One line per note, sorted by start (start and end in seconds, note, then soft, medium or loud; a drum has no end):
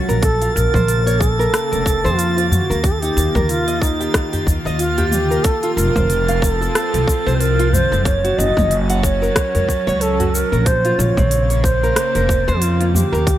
0.00 0.20 F#3 medium
0.00 0.20 C#4 medium
0.00 0.20 F#4 medium
0.00 13.38 A6 medium
0.09 0.47 A#1 medium
0.09 0.23 A#4 medium
0.09 cabasa soft
0.22 2.81 C#3 medium
0.22 5.41 A#3 medium
0.22 0.55 A4 loud
0.22 kick loud
0.22 open hi-hat medium
0.22 cabasa soft
0.42 0.72 F4 medium
0.42 open hi-hat soft
0.54 0.67 A#1 loud
0.54 1.21 A#4 loud
0.54 cabasa medium
0.74 1.44 A#1 loud
0.74 1.05 C5 medium
0.74 kick medium
0.74 mid tom medium
0.74 cabasa soft
0.88 open hi-hat medium
0.88 cabasa soft
1.06 1.20 C#5 medium
1.06 open hi-hat soft
1.06 cabasa soft
1.19 2.20 A4 medium
1.19 kick loud
1.19 cabasa medium
1.39 1.70 A#4 medium
1.39 cabasa soft
1.54 cross-stick medium
1.54 open hi-hat medium
1.54 cabasa soft
1.72 2.06 F1 medium
1.72 2.02 A#4 medium
1.72 open hi-hat soft
1.72 cabasa soft
1.86 kick loud
1.86 cabasa medium
2.04 2.58 F2 loud
2.04 2.35 C5 loud
2.04 cabasa soft
2.18 2.52 F4 medium
2.18 open hi-hat medium
2.18 cabasa soft
2.37 2.45 F4 medium
2.37 open hi-hat soft
2.50 2.83 F#4 medium
2.50 mid tom medium
2.50 udu loud
2.50 cabasa medium
2.70 3.08 D#2 loud
2.70 2.84 A#4 medium
2.70 cabasa soft
2.83 5.42 D#3 medium
2.83 8.01 F4 medium
2.83 2.93 G4 medium
2.83 kick loud
2.83 open hi-hat medium
2.83 udu medium
2.83 cabasa soft
2.92 3.01 A4 medium
3.00 3.33 D#4 medium
3.00 3.51 G4 loud
3.00 open hi-hat soft
3.00 cabasa soft
3.17 3.28 D#2 loud
3.17 cabasa medium
3.35 4.06 D#2 loud
3.35 3.66 A#4 medium
3.35 kick medium
3.35 mid tom medium
3.35 cabasa soft
3.49 3.82 F4 loud
3.49 open hi-hat medium
3.49 cabasa soft
3.68 3.81 D#5 medium
3.68 open hi-hat soft
3.68 cabasa soft
3.81 4.53 D#4 medium
3.81 kick loud
3.81 cabasa medium
4.00 4.31 G4 medium
4.00 open hi-hat soft
4.00 cabasa soft
4.14 kick loud
4.14 cross-stick medium
4.14 open hi-hat medium
4.14 cabasa soft
4.33 4.45 G4 medium
4.33 open hi-hat soft
4.33 udu medium
4.33 cabasa soft
4.47 4.58 D#2 medium
4.47 kick medium
4.47 cabasa medium
4.65 5.36 D#2 loud
4.65 4.79 D#5 medium
4.65 cabasa soft
4.78 5.09 F4 loud
4.78 open hi-hat medium
4.78 cabasa soft
4.98 5.11 G4 loud
4.98 open hi-hat soft
4.98 udu medium
5.11 5.45 G4 medium
5.11 mid tom medium
5.11 cabasa medium
5.31 5.43 A#4 medium
5.31 cabasa soft
5.44 8.03 F3 medium
5.44 8.03 C4 medium
5.44 5.75 A4 loud
5.44 kick loud
5.44 open hi-hat medium
5.44 cabasa soft
5.63 5.94 F4 medium
5.63 open hi-hat soft
5.75 5.89 F1 loud
5.75 6.43 A#4 loud
5.75 cabasa medium
5.95 6.66 F1 loud
5.95 6.27 C5 medium
5.95 kick medium
5.95 mid tom medium
5.95 cabasa soft
6.10 open hi-hat medium
6.10 cabasa soft
6.28 6.42 F5 medium
6.28 open hi-hat soft
6.28 cabasa soft
6.41 7.36 A4 loud
6.41 kick loud
6.41 cabasa medium
6.61 6.92 A4 medium
6.61 cabasa soft
6.75 cross-stick medium
6.75 open hi-hat medium
6.75 cabasa soft
6.94 7.02 C2 medium
6.94 7.24 A4 medium
6.94 open hi-hat soft
6.94 cabasa soft
7.08 kick loud
7.08 cabasa medium
7.26 7.80 C2 loud
7.26 7.57 C5 loud
7.26 cabasa soft
7.35 7.42 C5 medium
7.40 7.75 A#4 loud
7.40 open hi-hat medium
7.40 cabasa soft
7.59 7.67 F4 medium
7.59 open hi-hat soft
7.73 8.05 C5 loud
7.73 mid tom medium
7.73 udu loud
7.73 cabasa medium
7.92 8.30 F#1 loud
7.92 8.05 A4 medium
7.92 cabasa soft
8.05 10.64 F#3 medium
8.05 10.64 C#4 medium
8.05 10.64 F#4 medium
8.05 8.39 C#5 loud
8.05 kick loud
8.05 open hi-hat medium
8.05 cabasa soft
8.24 8.55 F#4 medium
8.24 open hi-hat soft
8.38 8.50 F#1 loud
8.38 8.77 D#5 loud
8.38 cabasa medium
8.57 9.27 F#1 loud
8.57 8.88 C#5 medium
8.57 kick medium
8.57 mid tom medium
8.57 cabasa soft
8.71 open hi-hat medium
8.71 cabasa soft
8.90 9.03 F#5 medium
8.90 open hi-hat soft
8.90 cabasa soft
9.03 10.02 C#5 loud
9.03 kick loud
9.03 cabasa medium
9.22 9.53 A#4 medium
9.22 cabasa soft
9.36 kick loud
9.36 cross-stick medium
9.36 open hi-hat medium
9.36 cabasa soft
9.55 9.63 C#2 medium
9.55 9.85 A#4 medium
9.55 open hi-hat soft
9.55 udu medium
9.55 cabasa soft
9.69 kick medium
9.69 cabasa medium
9.87 10.41 C#2 loud
9.87 10.18 C#5 loud
9.87 cabasa soft
10.01 10.35 A4 loud
10.01 open hi-hat medium
10.01 cabasa soft
10.20 10.28 F#4 medium
10.20 open hi-hat soft
10.20 udu loud
10.34 10.67 A#4 loud
10.34 cabasa medium
10.52 10.90 A#1 medium
10.52 10.66 A#4 medium
10.52 cabasa soft
10.66 13.25 C#3 medium
10.66 13.25 A#3 medium
10.66 11.00 C5 loud
10.66 kick loud
10.66 open hi-hat medium
10.66 cabasa soft
10.85 11.16 F4 medium
10.85 open hi-hat soft
10.99 11.10 A#1 loud
10.99 11.66 C#5 loud
10.99 cabasa medium
11.17 11.88 A#1 loud
11.17 11.48 C4 medium
11.17 kick medium
11.17 mid tom medium
11.17 cabasa soft
11.31 open hi-hat medium
11.31 cabasa soft
11.50 11.64 C#5 medium
11.50 open hi-hat soft
11.50 cabasa soft
11.64 12.62 C5 loud
11.64 kick loud
11.64 cabasa medium
11.83 12.14 A#4 medium
11.83 cabasa soft
11.96 cross-stick medium
11.96 open hi-hat medium
11.96 cabasa soft
12.15 12.49 F1 medium
12.15 12.46 A#4 medium
12.15 open hi-hat soft
12.15 cabasa soft
12.29 kick medium
12.29 cabasa medium
12.48 13.02 F2 loud
12.48 12.79 C5 loud
12.48 cabasa soft
12.61 12.95 F4 medium
12.61 open hi-hat medium
12.61 cabasa soft
12.80 12.88 F4 medium
12.80 open hi-hat soft
12.94 13.38 G4 loud
12.94 mid tom medium
12.94 udu medium
12.94 cabasa medium
13.12 13.38 D#2 medium
13.12 13.27 A#4 medium
13.12 cabasa soft
13.27 13.38 D#3 medium
13.27 13.38 A#3 medium
13.27 13.38 F4 medium
13.27 kick loud
13.27 open hi-hat medium
13.27 cabasa soft